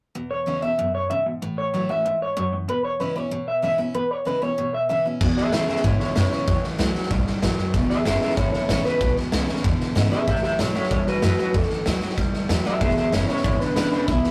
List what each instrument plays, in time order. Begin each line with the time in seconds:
0.15 steel-string acoustic guitar E2, clean electric guitar E2 B2
0.31 clean electric guitar C#5
0.46 clean electric guitar E2 C#3, steel-string acoustic guitar E3 G#3 C#4 E4
0.62 clean electric guitar E2 B2 E5, steel-string acoustic guitar C#4 E4
0.78 clean electric guitar E2 B2, steel-string acoustic guitar F#2
0.95 clean electric guitar C#5
1.10 clean electric guitar E2 C#3 E5, steel-string acoustic guitar G#2
1.26 clean electric guitar E2 B2
1.42 clean electric guitar A2 E3, steel-string acoustic guitar A2
1.58 clean electric guitar C#5
1.74 clean electric guitar A2 F#3, steel-string acoustic guitar E3 A3 C#4 F#4
1.89 clean electric guitar A2 E3 E5, steel-string acoustic guitar C#4 F#4
2.05 steel-string acoustic guitar G#2, clean electric guitar A2 E3
2.22 clean electric guitar C#5
2.37 steel-string acoustic guitar F#2, clean electric guitar A2 F#3 C#5
2.53 clean electric guitar A2 E3
2.68 clean electric guitar E2 B2 B4, steel-string acoustic guitar E2
2.85 clean electric guitar C#5
3.00 clean electric guitar E2 C#3 B4, steel-string acoustic guitar E3 G#3 C#4 E4
3.16 clean electric guitar E2 B2 C#5, steel-string acoustic guitar C#4 E4
3.31 clean electric guitar E2 B2, steel-string acoustic guitar B2
3.48 clean electric guitar E5
3.62 clean electric guitar E2 C#3 E5, steel-string acoustic guitar E3 G#3 C#4 E4
3.78 clean electric guitar E2 B2, steel-string acoustic guitar C#4 E4
3.95 steel-string acoustic guitar E2, clean electric guitar E2 B2 B4
4.11 clean electric guitar C#5
4.25 clean electric guitar E2 C#3 B4, steel-string acoustic guitar E3 G#3 C#4 E4
4.42 clean electric guitar E2 B2 C#5, steel-string acoustic guitar C#4 E4
4.58 clean electric guitar E2 B2, steel-string acoustic guitar B2
4.74 clean electric guitar E5
4.89 clean electric guitar E2 C#3 E5, steel-string acoustic guitar E3 G#3 C#4 E4
5.05 clean electric guitar E2 B2, steel-string acoustic guitar C#4 E4
5.21 upright bass E2, clean electric guitar E2 B2, kick, snare, crash
5.37 clean electric guitar G#4 E5, muted upright bass stroke, snare
5.52 clean electric guitar E2 C#3 G#4 E5, upright bass A2, steel-string acoustic guitar E3 G#3 C#4 E4, snare, hi-hat pedal
5.68 clean electric guitar E2 C#3 G#4 E5, steel-string acoustic guitar C#4 E4, muted upright bass stroke, snare
5.76 snare
5.84 clean electric guitar E2 D3 E4 C#5, upright bass G#2, steel-string acoustic guitar B2, kick, snare
6.00 clean electric guitar E4 C#5, muted upright bass stroke, snare
6.15 clean electric guitar E2 C#3 E4 C#5, upright bass F#2, steel-string acoustic guitar E3 G#3 C#4 E4, snare, hi-hat pedal
6.32 clean electric guitar E2 C#3 C#5, steel-string acoustic guitar C#4 E4, muted upright bass stroke, snare
6.48 upright bass E2, clean electric guitar A2 E3, steel-string acoustic guitar A2, kick, snare
6.64 snare
6.79 upright bass C#2, clean electric guitar A2 F#3, steel-string acoustic guitar E3 A3 C#4 F#4, snare, hi-hat pedal
6.94 clean electric guitar A2 F#3, steel-string acoustic guitar C#4 F#4, snare
7.03 snare
7.11 upright bass B1, steel-string acoustic guitar G#2, clean electric guitar A2 G3, kick, snare
7.27 snare
7.42 upright bass A1, steel-string acoustic guitar F#2, clean electric guitar A2 F#3, snare, hi-hat pedal
7.58 clean electric guitar A2 F#3, muted upright bass stroke, snare
7.74 upright bass E1, steel-string acoustic guitar E2, clean electric guitar E2 B2, kick, snare
7.90 clean electric guitar G#4 E5, snare
8.05 upright bass F#1, clean electric guitar E2 C#3 G#4 E5, steel-string acoustic guitar E3 G#3 C#4 E4, snare, hi-hat pedal
8.21 clean electric guitar E2 C#3 G#4 E5, snare
8.30 snare
8.37 upright bass G#1, clean electric guitar E2 D3 E4 C#5, steel-string acoustic guitar B2, kick, snare
8.52 clean electric guitar E4 C#5, muted upright bass stroke, snare
8.69 upright bass A1, clean electric guitar E2 C#3 E4 C#5, steel-string acoustic guitar E3 G#3 C#4 E4, snare, hi-hat pedal
8.85 clean electric guitar E2 C#3 B4, steel-string acoustic guitar C#4 E4, muted upright bass stroke, snare
9.01 upright bass B1, clean electric guitar E2 B2, steel-string acoustic guitar E2, kick, snare
9.17 muted upright bass stroke, snare
9.32 upright bass C#2, clean electric guitar E2 C#3, steel-string acoustic guitar E3 G#3 C#4 E4, snare, hi-hat pedal
9.48 clean electric guitar E2 C#3, steel-string acoustic guitar C#4 E4, snare
9.56 snare
9.64 clean electric guitar E2 D3, upright bass E2, steel-string acoustic guitar B2, kick, snare
9.80 snare
9.95 clean electric guitar E2 C#3, upright bass G#2, steel-string acoustic guitar E3 G#3 C#4 E4, snare, hi-hat pedal
10.11 clean electric guitar E2 C#3 G#4 E5, steel-string acoustic guitar C#4 E4, muted upright bass stroke, snare
10.27 upright bass A2, clean electric guitar A2 E3 G4 E5, steel-string acoustic guitar A2, kick, snare
10.35 snare
10.43 clean electric guitar G4 E5, muted upright bass stroke, snare
10.59 clean electric guitar A2 F#3 E4 C#5, upright bass B2, steel-string acoustic guitar E3 A3 C#4 F#4, snare, hi-hat pedal
10.75 clean electric guitar A2 F#3 E4 C#5, steel-string acoustic guitar C#4 F#4, muted upright bass stroke, snare
10.83 snare
10.91 steel-string acoustic guitar E2, clean electric guitar A2 G3 E4 C#5, upright bass C#3, kick, snare
11.07 clean electric guitar F#4 B4, muted upright bass stroke, snare
11.22 upright bass F#2, clean electric guitar A2 F#3 F#4 B4, steel-string acoustic guitar E3 A3 C#4 F#4, snare, hi-hat pedal
11.38 clean electric guitar A2 F#3 F#4 B4, steel-string acoustic guitar C#4 F#4, muted upright bass stroke, snare
11.54 upright bass E2, clean electric guitar A2 E3 A4, steel-string acoustic guitar A2, kick, snare
11.62 snare
11.70 muted upright bass stroke, snare
11.86 upright bass D2, clean electric guitar A2 F#3, steel-string acoustic guitar E3 A3 C#4 F#4, snare, hi-hat pedal
12.02 clean electric guitar A2 F#3, steel-string acoustic guitar C#4 F#4, snare
12.10 snare
12.18 upright bass C#2, steel-string acoustic guitar E2, clean electric guitar A2 G3, kick, snare
12.33 muted upright bass stroke, snare
12.49 upright bass E2, clean electric guitar A2 F#3, steel-string acoustic guitar E3 A3 C#4 F#4, snare, hi-hat pedal
12.65 clean electric guitar A2 F#3 G4 E5, steel-string acoustic guitar C#4 F#4, muted upright bass stroke, snare
12.81 upright bass E1, steel-string acoustic guitar E2, clean electric guitar E2 B2 G#4 E5, kick, snare
12.89 snare
12.97 clean electric guitar G#4 E5, snare
13.12 upright bass F#1, clean electric guitar E2 C#3 E4 C#5, steel-string acoustic guitar E3 G#3 C#4 E4, snare, hi-hat pedal
13.29 clean electric guitar E2 C#3 E4 C#5, steel-string acoustic guitar C#4 E4, muted upright bass stroke, snare
13.37 snare
13.44 upright bass G#1, clean electric guitar E2 D3 E4 C#5, steel-string acoustic guitar B2, kick, snare
13.59 clean electric guitar D4 B4, muted upright bass stroke, snare
13.76 upright bass A1, clean electric guitar E2 C#3 D4 B4, steel-string acoustic guitar E3 G#3 C#4 E4, snare, hi-hat pedal
13.91 clean electric guitar E2 C#3 D4 B4, muted upright bass stroke, snare
14.08 upright bass B1, clean electric guitar E2 B2 E4, steel-string acoustic guitar E2, kick, snare
14.24 muted upright bass stroke, snare